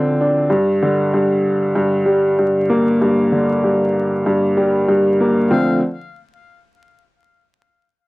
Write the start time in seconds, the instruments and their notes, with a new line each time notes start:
Already playing: upright piano D3 F3 C4
0.21 upright piano D4
0.50 upright piano G2
0.82 upright piano D3
1.14 upright piano G2
1.75 upright piano G2
2.06 upright piano G3
2.39 upright piano G2
2.69 upright piano A#3
3.01 upright piano G2
3.32 upright piano D3
3.64 upright piano G2
4.26 upright piano G2
4.57 upright piano G3
4.88 upright piano G2
5.21 upright piano A#3
5.51 upright piano D3 F3 A3 C4, muted trumpet F5